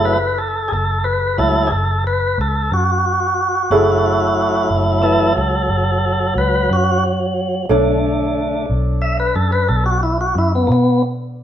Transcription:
Already playing: F#1 F#3 A3 E4 G#4 A4
0.05 B4
0.38 A4
0.68 G#4
0.72 F#1 A4
1.04 B4
1.38 C#2 F#3 A3 E4 A4
1.67 G#4
1.72 F#1 A4
2.07 B4
2.38 C#2 A4
2.71 F#2 F#4
3.70 F#1 F#3 A3 E4 G#4 A4
4.70 F#1
5.02 E3 A3 E4 A4
5.36 C#2 A4
5.69 F#1
6.35 C#2 B4
6.70 F#2 F#4
7.69 B1 D3 A3 D4 A4 C#5
8.70 B1
9.02 E5
9.20 B4
9.36 F#2 A4
9.52 B4
9.69 B1 A4
9.86 F#4
10.03 E4
10.21 F#4
10.35 F#2 E4
10.55 B3
10.67 B2 A#3
10.72 B3

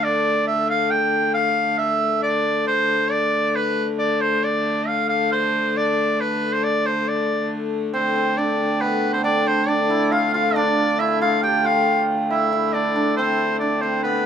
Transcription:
Already playing: D3 A3
0.04 D5
0.47 E5
0.70 F5
0.90 G5
1.34 F5
1.78 E5
2.23 D5
2.66 D3 A3 C5
3.11 D5
3.56 B4
3.98 D5
4.21 C5
4.43 D5
4.87 F5
5.09 F5
5.32 C5
5.77 D5
6.20 B4
6.53 C5
6.63 D5
6.86 C5
7.08 D5
7.94 D3 A3 C4 C5
8.16 C4
8.37 D4 D5
8.81 B3 B4
9.13 C4 C5
9.24 D4 D5
9.47 C5
9.68 D4 D5
9.90 E4
10.12 F4 F5
10.34 F4 F5
10.55 D4 D5
10.99 E4 E5
11.21 F4 F5
11.43 G4 G5
11.57 G4
11.64 F4 F5
12.30 E4 E5
12.53 E4
12.73 D4 D5
12.96 D4
13.16 D3 A3 C4 C5
13.59 D4 D5
13.81 C4 C5
14.03 B3 B4

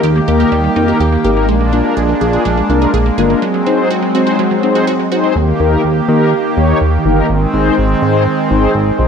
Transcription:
Already playing: D#3 A#3 G4
0.03 D#2 G4
0.16 A#3
0.28 D#2 A#3 D#4 G4 A#4
0.40 G4
0.52 D#2 G3
0.64 G3
0.76 F2 A#3 D#4 G4 A#4
0.88 G4
1.00 D#2 G4
1.12 A#3
1.24 G#1 A#3 D#4 G4 A#4
1.37 A#3
1.49 A#1 G#3 D4
1.61 G#3
1.73 A#3 D4 F4 A#4
1.97 A#1 G#4
2.09 A#3
2.21 A#1 A#3 D4 F4 G#4
2.33 G#4
2.45 A#1 G#3
2.58 G#3
2.69 C2 A#3 D4 F4 A#4
2.82 G#4
2.94 A#1 G#4
3.06 A#3
3.18 G1 A#3 D4 F4 G#4 A#4
3.30 A#3
3.42 F#3 C4
3.54 F#3
3.66 C4 D#4 G#4 C5
3.90 F#4
4.02 G#3
4.15 C4 D#4 F#4 G#4 C5
4.27 F#4
4.39 F#3
4.51 F#3
4.63 C4 D#4 G#4 C5
4.75 F#4
4.87 F#4
4.99 G#3
5.12 C4 D#4 F#4 G#4 C5
5.24 G#3
5.36 D#2 D#3 A#3 G4
5.60 D#2 A#3 D#4 G4 A#4
5.84 D#2
6.08 D#3 A#3 D#4 G4 A#4
6.57 D#2 A#3 D#4 G4 C#5
6.81 D#2
7.05 G1 A#3 D#4 G4 A#4
7.29 G#1 G#3 C4
7.54 G#1 C4 D#4 G#4 C5
7.78 G#1
8.02 G#2 C4 D#4 G#4 C5
8.50 G#1 C4 D#4 G#4 C5
8.75 G#1
8.99 A#1 C4 D#4 G#4 C5

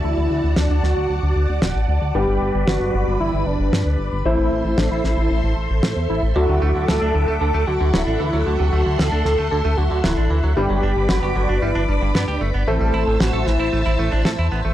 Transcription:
Already playing: F#3 D4 E4 F#4 A4 D5 A5
0.04 D2 E4 F#5
0.17 D2
0.31 D2
0.44 D2
0.56 D2 D4, snare
0.70 D2 D4
0.83 D2 F#4, snare
0.96 D2
1.10 D2
1.23 D2
1.36 D2
1.49 D2
1.62 D1, snare
1.75 A1
1.88 D2
2.01 D2
2.14 G1 G3 B3 D4 G4 B4 B5
2.28 G1
2.41 G1
2.54 G1
2.67 G1 F#4, snare
2.80 G1
2.94 G1
3.07 G1
3.20 G1 E4
3.33 G1
3.46 G1 D4
3.59 G1
3.72 G2, snare
3.86 D2
3.99 G1
4.12 G1
4.25 A1 A3 C4 E4 A4 C5 E5 C6
4.38 A1
4.51 A1
4.65 A1
4.78 A1 D4, snare
4.91 A1 E4
5.04 A1 E4, snare
5.17 A1
5.31 A1
5.44 A1
5.57 A1
5.70 A1
5.83 A2, snare
5.96 E2
6.09 A1 E4
6.22 A1
6.36 D2 D3 F#3 D4 E4 F#4 A4 F#5 D6
6.49 D2 C3
6.62 D2 A3
6.75 D2 D3
6.88 D2 A2 A4, snare
7.02 D2 D4
7.15 D2 A2
7.28 D2 A3
7.41 D2 D3 A4
7.54 D2 A3
7.67 D2 D3 F#4
7.80 D2 D3
7.93 D1 F#3 E4, snare
8.07 A1 D4
8.19 D2 E3 E4
8.33 D2 F#3
8.46 D2 D3 F#4 C6
8.60 D2 C3
8.73 D2 A3
8.86 D2 D3
8.98 D2 A2 A4, snare
9.12 D2 D4
9.25 D2 A2, snare
9.38 D2 A3
9.51 D2 D3 A4
9.65 D2 A3
9.77 D2 D3 F#4
9.91 D2 D3
10.04 D1 F#3 E4, snare
10.17 A1 D4
10.31 D2 E3
10.44 D2 F#3
10.56 G1 G3 B3 D4 G4 B4 D5 B5 D6
10.70 G1 F#3
10.83 G1 D4
10.96 G1 G2
11.09 G1 D3 F#4, snare
11.23 G1 G4
11.36 G1 D3
11.49 G1 D4
11.62 G1 G3 E4
11.75 G1 D4
11.88 G1 G3 D4
12.02 G1 G2
12.15 G2 B3, snare
12.28 D2 G4
12.41 G1 A3
12.54 G1 B3
12.67 A1 A3 C4 E4 A4 C5 E5 A5 E6
12.81 A1 G3
12.94 A1 E4
13.07 A1 A2
13.20 A1 E3 F#4, snare
13.33 A1 A4
13.46 A1 E3 E4, snare
13.60 A1 E4
13.73 A1 A3
13.86 A1 E4
13.99 A1 A3
14.12 A1 D4
14.25 A2 A4, snare
14.39 E2 E4
14.52 A1 B3
14.65 A1 A3

